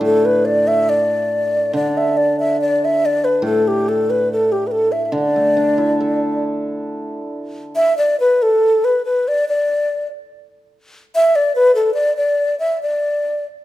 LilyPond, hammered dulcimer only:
\new Staff \with { instrumentName = "Hammered dulcimer" } { \clef bass \time 2/4 \tempo 4 = 70 <a, d>2 | d2 | a,2 | d16 a16 d'16 e'16 a'4~ |
a'4 r4 | r2 | r2 | r2 | }